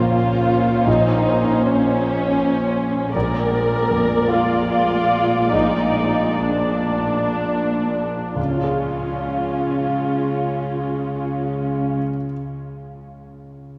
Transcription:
Already playing: A#1 F2 A#2 C#4 F4 C5
0.12 F4
0.87 A#1 D#4
1.63 C#4
3.15 A#1 A#2 G#3 A#4 D5
3.91 F2
4.32 F4
4.72 F4
5.53 A#1 D#4
6.40 D4
8.36 C#2 C#3 G#3 C#4 F4
8.43 C#3
8.50 C#4
8.58 F4
8.64 G#4
8.71 F5

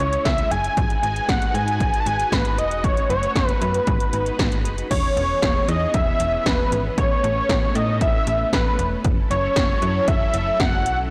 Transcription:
Already playing: C#3 G#3 C#4 E4 C#5
0.00 C#2
0.13 closed hi-hat
0.25 C#2 E5, kick, snare, closed hi-hat
0.38 closed hi-hat
0.51 F#1 G#5, closed hi-hat
0.64 closed hi-hat
0.77 G#1 D#4 F#4 B4, kick, closed hi-hat
0.90 closed hi-hat
1.03 G#1 G#5, closed hi-hat
1.16 closed hi-hat
1.29 G#1 F#5, kick, snare, closed hi-hat
1.42 closed hi-hat
1.54 G#2 G#5, closed hi-hat
1.68 closed hi-hat
1.80 G#1, kick, closed hi-hat
1.94 closed hi-hat
2.00 A5
2.06 G#1 G#5, closed hi-hat
2.20 closed hi-hat
2.32 G#1 B4, kick, snare, closed hi-hat
2.45 closed hi-hat
2.58 E1 D#5, closed hi-hat
2.71 closed hi-hat
2.84 F#1 A3 C#4 C#5, kick, closed hi-hat
2.97 closed hi-hat
3.10 F#1 C#5, closed hi-hat
3.23 closed hi-hat
3.36 F#1, kick, snare, closed hi-hat
3.48 B4, closed hi-hat
3.61 F#2 B4, closed hi-hat
3.74 closed hi-hat
3.87 G#1 G#3 D#4 B4, kick, closed hi-hat
4.00 closed hi-hat
4.13 G#1, closed hi-hat
4.26 closed hi-hat
4.39 G#1, kick, snare, closed hi-hat
4.52 closed hi-hat
4.65 F#1, closed hi-hat
4.78 closed hi-hat
4.91 E1 E3 B3 C#4 G#4 C#5, kick, closed hi-hat, crash
5.17 E1, closed hi-hat
5.42 E1, kick, snare, closed hi-hat
5.68 E2 D#5, closed hi-hat
5.94 E1 E5, kick, closed hi-hat
6.20 E1, closed hi-hat
6.46 E1 B4, kick, snare, closed hi-hat
6.72 G#1, closed hi-hat
6.98 A1 A3 C#5, kick, closed hi-hat
7.24 A1, closed hi-hat
7.49 A1, kick, snare, closed hi-hat
7.75 A2 D#5, closed hi-hat
8.01 A1 E5, kick, closed hi-hat
8.27 A1, closed hi-hat
8.53 A1 B4, kick, snare, closed hi-hat
8.79 E1, closed hi-hat
9.04 F#1 F#3 C#4 E4 A4, kick, closed hi-hat
9.31 F#1 C#5, closed hi-hat
9.56 F#1, kick, snare, closed hi-hat
9.82 F#2, closed hi-hat
10.08 F#1 E5, kick, closed hi-hat
10.34 F#1, closed hi-hat
10.60 F#1 F#5, kick, snare, closed hi-hat
10.86 B1, closed hi-hat

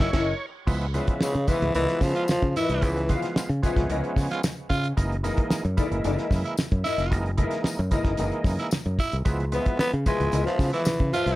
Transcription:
Already playing: C#5
0.00 F#1 E4 A#4 D#5, kick, snare
0.13 F#1 E4 A#4 D#5, kick, snare, crash
0.67 C#2 F3 G#3 B3 E4, kick, crash, tambourine, muted conga
0.82 closed hi-hat, muted conga
0.94 C#3 F3 G#3 B3 E4 F4 B4 E5, closed hi-hat, tambourine, high conga
1.07 kick, closed hi-hat
1.21 C#3, muted fingered electric bass stroke, snare, tambourine
1.34 C#3, closed hi-hat, muted conga
1.48 E3 F3 G#3 B3 E4 F4 B4 E5, kick, closed hi-hat, tambourine, high conga
1.62 C#2, closed hi-hat, low conga
1.75 C#2 E3 F4 B4 E5, closed hi-hat, tambourine, muted conga, high conga
1.88 snare, closed hi-hat
2.01 C#3 F3, kick, snare, open hi-hat, tambourine, high conga
2.15 F4, closed hi-hat
2.28 F3, snare, tambourine, muted conga, high conga
2.42 C#3, kick, closed hi-hat, muted conga
2.49 F3
2.56 E3 E4 F4 B4 E5, snare, closed hi-hat, tambourine, low conga
2.69 C2, closed hi-hat
2.82 C#2 F3 G#3 B3 E4, kick, closed hi-hat, tambourine
2.97 closed hi-hat
3.09 F3 G#3 B3 F4 B4 F5, kick, closed hi-hat, tambourine, high conga
3.22 snare, closed hi-hat
3.36 muted fingered electric bass stroke, snare, tambourine, muted conga
3.49 C#3, closed hi-hat
3.63 F3 G#3 B3 C#4 F4 B4 E5, kick, closed hi-hat, tambourine, high conga
3.76 C#2, kick, snare, closed hi-hat, low conga
3.90 C#2 F4 B4 E5, closed hi-hat, muted conga, high conga
4.04 closed hi-hat, muted conga
4.16 C#3, kick, snare, open hi-hat, tambourine, high conga
4.31 F4, snare, closed hi-hat
4.43 snare, tambourine, high conga
4.57 closed hi-hat
4.70 C#3 F4, kick, closed hi-hat, tambourine, low conga
4.84 closed hi-hat
4.97 F#1 E3 G#3 A#3 D#4, kick, closed hi-hat, tambourine, muted conga
5.12 closed hi-hat
5.24 E3 G#3 A#3 D#4 E4 A#4 D#5, closed hi-hat, tambourine, high conga
5.37 kick, closed hi-hat
5.50 muted fingered electric bass stroke, snare, tambourine, muted conga
5.65 F#2, closed hi-hat, muted conga
5.77 E3 G#3 A#3 E4 A#4 D#5, kick, closed hi-hat, tambourine, high conga
5.91 F#1, closed hi-hat, low conga
6.04 F#1 E4 A#4 D#5, closed hi-hat, tambourine, high conga
6.18 snare, closed hi-hat, muted conga
6.31 F#2, kick, snare, open hi-hat, tambourine, high conga
6.45 E4, closed hi-hat
6.57 snare, tambourine, high conga
6.71 F#2, kick, closed hi-hat, muted conga
6.84 E4 A#4 D#5, snare, closed hi-hat, tambourine, low conga
6.98 F1, closed hi-hat
7.11 F#1 E3 G#3 A#3 D#4, kick, closed hi-hat, tambourine
7.26 closed hi-hat
7.37 E3 G#3 A3 D#4 E4 A#4 E5, kick, closed hi-hat, high conga
7.44 A#3
7.51 snare, closed hi-hat
7.64 muted fingered electric bass stroke, snare, tambourine, muted conga
7.78 F#2, closed hi-hat, muted conga
7.91 E3 G#3 A#3 D#4 E4 A#4 D#5, kick, closed hi-hat, tambourine, high conga, low conga
8.04 F#1, kick, snare, closed hi-hat, low conga
8.17 F#1 E4 A#4 D#5, closed hi-hat, tambourine, muted conga, high conga
8.32 closed hi-hat, muted conga
8.44 F#2, kick, snare, open hi-hat, tambourine, high conga
8.59 E4, snare, closed hi-hat
8.71 snare, tambourine, high conga
8.85 F#2, closed hi-hat
8.99 E4, kick, closed hi-hat, tambourine, low conga
9.12 C2, closed hi-hat
9.25 C#2 F3 G#3 B3 E4, kick, closed hi-hat, tambourine, muted conga
9.40 closed hi-hat, muted conga
9.52 F3 G#3 B3 E4 F4 B4 E5, closed hi-hat, tambourine, high conga
9.66 kick, closed hi-hat
9.79 B3, muted fingered electric bass stroke, snare, tambourine
9.93 C#3, closed hi-hat
10.06 F3 G#3 B3 E4 F4 B4 E5, kick, closed hi-hat, tambourine, high conga
10.20 C#2, closed hi-hat, low conga
10.32 C#2 F4 B4 E5, closed hi-hat, tambourine, muted conga, high conga
10.46 F3, snare, closed hi-hat, muted conga
10.59 C#3, kick, snare, open hi-hat, tambourine, high conga
10.73 E3 E4, closed hi-hat
10.85 snare, tambourine, muted conga, high conga
10.99 C#3, kick, closed hi-hat
11.13 F3 F4 B4 E5, snare, closed hi-hat, tambourine, low conga
11.26 C2, closed hi-hat

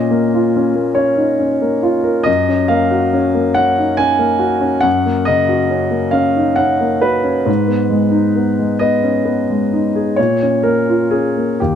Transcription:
Already playing: A#2 C#4 D#5
0.11 A#3
0.34 F4
0.56 C#4
0.75 A#3
0.95 C#4 C#5
1.17 D#4
1.39 C#4
1.62 A#3
1.83 F4
2.04 A#4
2.23 F#2 D#5
2.49 C#4
2.68 A#3 F5
2.91 F#4
3.13 C#4
3.35 A#3
3.54 C#4 F#5
3.78 D#4
3.97 C#4 G#5
4.19 A#3
4.39 F#4
4.61 C#4
4.81 F#2 F#5
5.06 A#3
5.25 C#3 D#5
5.49 F#4
5.70 C#4
5.91 A#3
6.11 C#4 F5
6.36 D#4
6.56 C#4 F#5
6.81 A#3
7.02 F#4 B4
7.24 C#4
7.46 G#2
7.68 B3
7.90 G#3
8.11 D#4
8.36 B3
8.59 G#3
8.79 B3 D#5
9.03 C#4
9.25 B3
9.50 G#3
9.73 D#4
9.95 G#4
10.16 A#2 C#5
10.43 C#4
10.63 A#3 A#4
10.89 F4
11.11 C#4 G#4
11.37 A#3
11.60 D#2 G4

